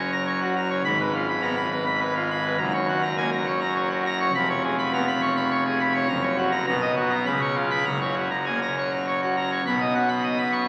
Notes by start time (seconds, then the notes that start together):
Already playing: F#1 F#2 C#5
0.12 A#5
0.26 C#5
0.41 F#4
0.57 A#5
0.70 C#5
0.85 G#1 G#2 B5
1.00 B4
1.14 F4
1.28 B5
1.42 B3 A#5
1.56 B5
1.72 B4
1.86 B5
2.00 B4
2.16 F4
2.31 B5
2.45 B4
2.58 F#1 F#2 A#5
2.74 C#5
2.88 F#4
3.02 A#5
3.17 A#3 G#5
3.33 A#5
3.47 C#5
3.61 A#5
3.76 C#5
3.90 F#4
4.06 A#5
4.20 C#5
4.34 F1 F2 B5
4.50 C#5
4.64 G#4
4.79 B5
4.93 B3 A#5
5.08 B5
5.22 C#5
5.36 B5
5.50 C#5
5.66 G#4
5.80 B5
5.95 C#5
6.08 F#1 F#2 A#5
6.23 C#5
6.38 F#4
6.52 A#5
6.67 B1 B2 A#5
6.81 D#5
6.97 F#4
7.10 A#5
7.26 C#2 C#3 B5
7.41 C#5
7.55 F4
7.70 B5
7.85 F#1 F#2 A#5
8.01 C#5
8.16 F#4
8.31 A#5
8.46 A#3 G#5
8.62 A#5
8.78 C#5
8.92 A#5
9.07 C#5
9.22 F#4
9.37 A#5
9.51 C#5
9.66 B1 B2 B5
9.80 D#5
9.95 F#5
10.09 B5
10.24 D#5
10.38 B5
10.52 C#6